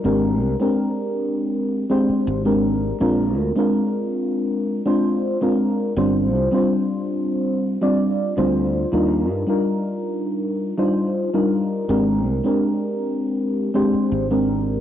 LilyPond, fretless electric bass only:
\new Staff \with { instrumentName = "Fretless electric bass" } { \clef bass \time 4/4 \key aes \lydian \tempo 4 = 81 aes,,8 c,16 r2 r16 aes,,8. r16 | bes,,8 d,16 r2. r16 | g,,8 c,16 r2 r8 d,8 r16 | ees,8 g,16 r2. r16 |
aes,,8 c,16 r2 r16 aes,,8. r16 | }